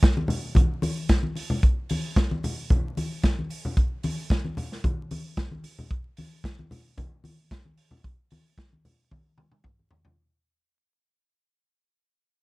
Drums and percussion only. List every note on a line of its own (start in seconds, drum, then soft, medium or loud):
0.03 kick loud
0.03 snare loud
0.03 closed hi-hat medium
0.17 high conga medium
0.28 open hi-hat medium
0.28 muted conga soft
0.28 low conga medium
0.55 kick loud
0.55 closed hi-hat medium
0.55 muted conga soft
0.55 high conga medium
0.55 low conga medium
0.82 open hi-hat medium
0.82 muted conga soft
0.82 high conga medium
1.09 kick loud
1.09 snare loud
1.09 closed hi-hat medium
1.09 muted conga soft
1.23 high conga medium
1.35 open hi-hat medium
1.35 muted conga soft
1.50 low conga medium
1.63 kick loud
1.63 closed hi-hat medium
1.63 muted conga soft
1.89 open hi-hat medium
1.89 muted conga soft
1.89 high conga medium
2.16 kick loud
2.16 snare loud
2.16 closed hi-hat medium
2.16 muted conga soft
2.31 high conga medium
2.44 open hi-hat medium
2.44 muted conga soft
2.44 low conga medium
2.70 kick loud
2.70 closed hi-hat medium
2.70 high conga medium
2.70 low conga loud
2.97 open hi-hat medium
2.97 muted conga soft
2.97 high conga medium
3.23 kick loud
3.23 snare loud
3.23 closed hi-hat medium
3.39 high conga medium
3.50 open hi-hat medium
3.65 low conga medium
3.77 kick loud
3.77 closed hi-hat medium
3.77 muted conga soft
4.03 open hi-hat medium
4.03 muted conga soft
4.03 high conga medium
4.30 kick loud
4.30 snare loud
4.30 closed hi-hat medium
4.30 muted conga soft
4.45 high conga medium
4.57 open hi-hat medium
4.57 muted conga soft
4.57 low conga medium
4.72 snare soft
4.84 kick loud
4.84 closed hi-hat medium
4.84 high conga medium
4.84 low conga medium
5.11 open hi-hat medium
5.11 muted conga soft
5.11 high conga medium
5.37 kick loud
5.37 snare loud
5.37 closed hi-hat medium
5.37 muted conga soft
5.51 high conga medium
5.64 open hi-hat medium
5.64 muted conga soft
5.79 low conga medium
5.91 kick loud
5.91 closed hi-hat medium
6.17 open hi-hat medium
6.17 high conga medium
6.44 kick loud
6.44 snare loud
6.44 closed hi-hat medium
6.59 high conga medium
6.71 open hi-hat medium
6.71 muted conga soft
6.71 low conga medium
6.97 kick loud
6.97 closed hi-hat medium
6.97 muted conga soft
6.97 high conga medium
6.97 low conga medium
7.24 open hi-hat medium
7.24 high conga medium
7.51 kick loud
7.51 snare loud
7.51 closed hi-hat medium
7.51 muted conga soft
7.65 high conga medium
7.77 open hi-hat medium
7.91 low conga medium
8.04 kick loud
8.04 closed hi-hat medium
8.04 muted conga soft
8.30 open hi-hat medium
8.30 muted conga soft
8.30 high conga medium
8.58 kick loud
8.58 snare loud
8.58 closed hi-hat medium
8.73 high conga medium
8.85 open hi-hat medium
8.85 low conga medium
9.11 kick loud
9.11 high tom medium
9.11 high conga medium
9.11 low conga medium
9.38 mid tom medium
9.38 high conga medium
9.52 mid tom medium
9.64 kick loud
9.64 mid tom medium
9.64 muted conga soft
9.79 high conga medium
9.91 floor tom loud
9.91 muted conga soft
10.05 floor tom loud
10.05 low conga medium